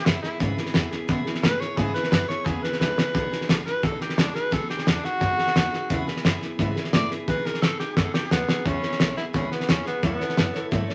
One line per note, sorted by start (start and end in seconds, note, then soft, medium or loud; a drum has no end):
0.05 0.23 F#2 loud
0.05 0.23 B3 medium
0.05 0.22 E4 loud
0.05 0.23 E4 medium
0.05 0.21 G#4 medium
0.05 0.23 B4 medium
0.05 snare loud
0.05 hi-hat pedal medium
0.22 0.40 B3 medium
0.22 0.39 E4 loud
0.22 0.40 E4 soft
0.22 0.40 G#4 medium
0.22 0.40 B4 medium
0.22 snare soft
0.40 0.57 G#2 medium
0.40 0.58 C#3 loud
0.40 0.57 E3 medium
0.40 0.58 B3 medium
0.40 0.58 E4 medium
0.40 0.56 G#4 loud
0.40 0.57 B4 loud
0.40 kick loud
0.40 snare soft
0.57 0.72 B3 medium
0.57 0.73 E4 medium
0.57 0.74 G#4 medium
0.57 0.74 B4 medium
0.57 snare soft
0.66 snare soft
0.73 0.91 E2 medium
0.73 0.91 B3 medium
0.73 0.92 E4 medium
0.73 0.90 G#4 medium
0.73 0.91 B4 medium
0.73 snare medium
0.73 hi-hat pedal medium
0.91 1.08 B3 soft
0.91 1.08 E4 medium
0.91 1.09 G#4 medium
0.91 1.09 B4 medium
0.91 snare soft
1.08 1.25 B2 loud
1.08 1.26 C#3 medium
1.08 1.26 E3 medium
1.08 1.26 B3 medium
1.08 1.26 E4 loud
1.08 1.24 G#4 medium
1.08 1.25 B4 medium
1.08 kick loud
1.08 snare soft
1.25 1.41 B3 soft
1.25 1.42 E4 soft
1.25 1.43 G#4 medium
1.25 1.43 B4 soft
1.25 muted upright bass stroke medium
1.25 snare soft
1.35 snare soft
1.42 1.60 A2 loud
1.42 1.60 B3 medium
1.42 1.61 E4 medium
1.42 1.58 G#4 medium
1.42 1.62 B4 loud
1.42 1.59 B4 medium
1.42 snare loud
1.42 hi-hat pedal medium
1.59 1.77 B3 soft
1.59 1.77 E4 medium
1.59 1.77 G#4 medium
1.59 1.78 B4 medium
1.59 1.79 C#5 loud
1.59 muted upright bass stroke medium
1.59 snare soft
1.77 1.94 G#2 medium
1.77 1.95 C#3 medium
1.77 1.95 E3 medium
1.77 1.95 B3 loud
1.77 1.95 E4 medium
1.77 1.93 G#4 loud
1.77 1.92 G#4 loud
1.77 1.93 B4 loud
1.77 kick loud
1.77 snare soft
1.93 2.09 B3 soft
1.93 2.11 E4 medium
1.93 2.11 G#4 medium
1.93 2.10 B4 loud
1.93 2.12 B4 medium
1.93 muted upright bass stroke medium
1.93 snare soft
2.03 snare soft
2.10 2.28 F#2 medium
2.10 2.28 B3 medium
2.10 2.29 E4 medium
2.10 2.26 G#4 medium
2.10 2.28 B4 loud
2.10 snare loud
2.10 hi-hat pedal medium
2.27 2.45 B3 soft
2.27 2.45 E4 soft
2.27 2.46 G#4 medium
2.27 2.46 B4 medium
2.27 2.47 C#5 loud
2.27 snare soft
2.45 2.62 E2 medium
2.45 2.63 C#3 medium
2.45 2.63 E3 medium
2.45 2.63 B3 medium
2.45 2.63 E4 medium
2.45 2.64 G#4 medium
2.45 2.61 G#4 medium
2.45 2.62 B4 medium
2.45 kick loud
2.45 snare soft
2.62 2.78 B3 soft
2.62 2.79 E4 soft
2.62 2.80 G#4 medium
2.62 2.79 B4 medium
2.62 2.81 B4 soft
2.62 snare soft
2.72 snare soft
2.79 2.97 C#2 loud
2.79 2.97 B3 medium
2.79 2.98 E4 medium
2.79 2.95 G#4 medium
2.79 3.47 B4 loud
2.79 2.97 B4 medium
2.79 snare medium
2.79 hi-hat pedal medium
2.96 3.13 B3 soft
2.96 3.14 E4 soft
2.96 3.14 G#4 medium
2.96 3.15 B4 medium
2.96 muted upright bass stroke medium
2.96 snare medium
3.14 3.31 B1 loud
3.14 3.32 B3 medium
3.14 3.32 D#4 loud
3.14 3.32 F#4 medium
3.14 3.30 G#4 medium
3.14 kick loud
3.14 snare soft
3.31 3.49 D#4 medium
3.31 3.48 F#4 medium
3.31 3.49 G#4 medium
3.31 muted upright bass stroke medium
3.31 snare soft
3.41 snare soft
3.48 3.66 A1 loud
3.48 3.66 B3 medium
3.48 3.66 D#4 medium
3.48 3.66 F#4 medium
3.48 3.64 G#4 medium
3.48 snare loud
3.48 hi-hat pedal medium
3.65 3.83 D#4 medium
3.65 3.82 F#4 soft
3.65 3.83 G#4 medium
3.65 3.85 B4 loud
3.65 muted upright bass stroke medium
3.65 snare soft
3.83 4.00 B1 medium
3.83 4.01 B3 medium
3.83 4.00 D#4 medium
3.83 4.01 F#4 medium
3.83 3.99 G#4 medium
3.83 4.00 A4 loud
3.83 kick loud
3.83 snare soft
4.00 4.18 D#4 soft
4.00 4.17 F#4 soft
4.00 4.20 G4 medium
4.00 4.18 G#4 soft
4.00 muted upright bass stroke medium
4.00 snare soft
4.09 snare soft
4.17 4.34 C#2 loud
4.17 4.35 B3 medium
4.17 4.35 D4 loud
4.17 4.35 D#4 medium
4.17 4.36 F#4 medium
4.17 4.33 G#4 medium
4.17 snare loud
4.17 hi-hat pedal medium
4.34 4.51 D#4 medium
4.34 4.51 F#4 soft
4.34 4.52 G#4 medium
4.34 4.54 B4 loud
4.34 snare soft
4.51 4.68 D#2 medium
4.51 4.69 B3 medium
4.51 4.69 D#4 loud
4.51 4.69 F#4 medium
4.51 4.67 G#4 medium
4.51 4.69 A4 loud
4.51 kick loud
4.51 snare soft
4.69 4.87 D#4 medium
4.69 4.85 F#4 soft
4.69 4.90 G4 loud
4.69 4.86 G#4 medium
4.69 muted upright bass stroke soft
4.69 snare soft
4.78 snare soft
4.85 5.03 E2 loud
4.85 5.03 B3 medium
4.85 5.06 D4 loud
4.85 5.03 D#4 medium
4.85 5.04 F#4 medium
4.85 5.02 G#4 medium
4.85 snare loud
4.85 hi-hat pedal medium
5.03 5.20 D#4 medium
5.03 6.05 F#4 loud
5.03 5.20 F#4 soft
5.03 5.21 G#4 medium
5.03 muted upright bass stroke medium
5.03 snare soft
5.20 5.37 F#2 medium
5.20 5.38 B3 medium
5.20 5.38 D#4 medium
5.20 5.39 F#4 medium
5.20 5.36 G#4 medium
5.20 kick loud
5.20 snare soft
5.37 5.56 D#4 soft
5.37 5.55 F#4 soft
5.37 5.55 G#4 medium
5.37 muted upright bass stroke medium
5.37 snare soft
5.47 snare soft
5.55 5.71 D#2 loud
5.55 5.73 B3 medium
5.55 5.73 D#4 medium
5.55 5.73 F#4 medium
5.55 5.71 G#4 medium
5.55 snare loud
5.55 hi-hat pedal loud
5.72 5.91 D#4 medium
5.72 5.91 F#4 medium
5.72 5.90 G#4 medium
5.72 snare soft
5.90 6.06 E2 loud
5.90 6.07 C#3 loud
5.90 6.07 E3 loud
5.90 6.08 B3 loud
5.90 6.08 E4 loud
5.90 6.05 G#4 loud
5.90 6.07 B4 loud
5.90 kick loud
5.90 snare soft
6.07 6.22 B3 medium
6.07 6.24 E4 medium
6.07 6.24 G#4 medium
6.07 6.25 B4 medium
6.07 snare soft
6.16 snare soft
6.23 6.41 F#2 medium
6.23 6.41 B3 medium
6.23 6.42 E4 medium
6.23 6.40 G#4 medium
6.23 6.41 B4 medium
6.23 snare loud
6.23 hi-hat pedal medium
6.41 6.58 B3 medium
6.41 6.59 E4 medium
6.41 6.59 G#4 medium
6.41 6.59 B4 medium
6.41 snare soft
6.59 6.75 G#2 medium
6.59 6.76 C#3 medium
6.59 6.76 E3 medium
6.59 6.77 B3 medium
6.59 6.76 E4 medium
6.59 6.74 G#4 medium
6.59 6.75 B4 medium
6.59 kick loud
6.59 snare soft
6.75 6.92 B3 soft
6.75 6.93 E4 medium
6.75 6.93 G#4 medium
6.75 6.94 B4 medium
6.75 snare soft
6.84 snare soft
6.93 7.10 A2 loud
6.93 7.11 B3 medium
6.93 7.11 E4 medium
6.93 7.09 G#4 medium
6.93 7.10 B4 medium
6.93 7.10 D5 loud
6.93 snare loud
6.93 hi-hat pedal loud
7.11 7.26 B3 medium
7.11 7.28 E4 medium
7.11 7.28 G#4 medium
7.11 7.28 B4 medium
7.11 snare soft
7.28 7.44 B2 loud
7.28 7.45 B3 medium
7.28 7.46 D#4 medium
7.28 7.45 F#4 medium
7.28 7.44 G#4 medium
7.28 7.46 B4 medium
7.28 kick loud
7.28 snare soft
7.45 7.64 D#4 medium
7.45 7.63 G#4 medium
7.45 7.62 A#4 medium
7.45 muted upright bass stroke soft
7.45 snare soft
7.49 7.62 F#4 soft
7.54 snare soft
7.62 7.78 G#2 medium
7.62 7.80 B3 medium
7.62 7.80 D#4 medium
7.62 7.80 F#4 medium
7.62 7.79 G#4 medium
7.62 7.79 A4 loud
7.62 snare medium
7.62 hi-hat pedal medium
7.79 7.97 D#4 medium
7.79 7.96 F#4 soft
7.79 7.96 G4 medium
7.79 7.97 G#4 medium
7.79 snare soft
7.96 8.13 F#2 loud
7.96 8.14 B3 medium
7.96 8.14 D#4 medium
7.96 8.14 F#4 medium
7.96 8.13 G#4 medium
7.96 8.13 A4 medium
7.96 kick loud
7.96 snare medium
8.14 8.32 D#4 soft
8.14 8.31 F#4 soft
8.14 8.31 G4 loud
8.14 8.31 G#4 medium
8.14 snare medium
8.31 8.48 D#2 loud
8.31 8.48 B3 medium
8.31 8.68 B3 loud
8.31 8.49 D#4 medium
8.31 8.49 F#4 medium
8.31 8.47 G#4 medium
8.31 snare loud
8.31 hi-hat pedal medium
8.48 8.66 D#4 medium
8.48 8.67 F#4 medium
8.48 8.65 G#4 medium
8.48 muted upright bass stroke medium
8.48 snare medium
8.65 8.82 E2 medium
8.65 8.83 C#3 medium
8.65 8.83 E3 medium
8.65 8.83 B3 medium
8.65 9.17 C#4 loud
8.65 8.83 E4 medium
8.65 8.81 G#4 loud
8.65 8.82 B4 loud
8.65 kick loud
8.65 snare soft
8.82 8.98 B3 soft
8.82 8.99 E4 soft
8.82 9.00 G#4 medium
8.82 9.00 B4 medium
8.82 muted upright bass stroke medium
8.82 snare soft
8.92 snare soft
8.99 9.17 B1 loud
8.99 9.17 B3 medium
8.99 9.17 E4 medium
8.99 9.17 B4 medium
8.99 snare loud
8.99 hi-hat pedal medium
9.17 9.33 B3 soft
9.17 9.25 E4 loud
9.17 9.34 E4 soft
9.17 9.34 G#4 medium
9.17 9.34 B4 soft
9.17 muted upright bass stroke medium
9.17 snare soft
9.33 9.51 C#2 medium
9.33 9.52 C#3 medium
9.33 9.51 E3 medium
9.33 9.52 B3 medium
9.33 9.51 C#4 medium
9.33 9.51 E4 medium
9.33 9.49 G#4 medium
9.33 9.50 B4 medium
9.33 kick loud
9.33 snare soft
9.50 9.71 B3 medium
9.50 9.66 B3 soft
9.50 9.67 E4 soft
9.50 9.68 G#4 soft
9.50 9.69 B4 soft
9.50 muted upright bass stroke medium
9.50 snare soft
9.60 snare soft
9.67 9.86 D#2 loud
9.67 9.85 B3 medium
9.67 9.86 C#4 loud
9.67 9.86 E4 medium
9.67 9.84 G#4 medium
9.67 9.85 B4 medium
9.67 snare loud
9.67 hi-hat pedal loud
9.85 10.03 B3 loud
9.85 10.03 B3 soft
9.85 10.03 E4 medium
9.85 10.03 G#4 medium
9.85 10.03 B4 soft
9.85 snare soft
10.02 10.20 E2 loud
10.02 10.20 F#3 medium
10.02 10.20 A3 medium
10.02 10.68 B3 loud
10.02 10.21 E4 loud
10.02 10.20 A4 medium
10.02 10.18 C#5 medium
10.02 kick loud
10.02 snare soft
10.19 10.37 E4 medium
10.19 10.38 A4 medium
10.19 10.37 C#5 medium
10.19 snare soft
10.29 snare soft
10.37 10.54 F#2 medium
10.37 10.55 F#3 medium
10.37 10.55 E4 medium
10.37 10.55 A4 medium
10.37 10.53 C#5 medium
10.37 snare loud
10.37 hi-hat pedal medium
10.54 10.71 E4 soft
10.54 10.72 A4 medium
10.54 10.72 C#5 medium
10.54 snare soft
10.71 10.89 G#2 medium
10.71 10.89 F#3 medium
10.71 10.89 A3 medium
10.71 10.89 E4 medium
10.71 10.89 A4 loud
10.71 10.87 C#5 loud
10.71 kick loud
10.71 snare soft
10.88 10.95 E4 soft
10.88 10.95 A4 soft
10.88 10.95 C#5 medium
10.88 snare soft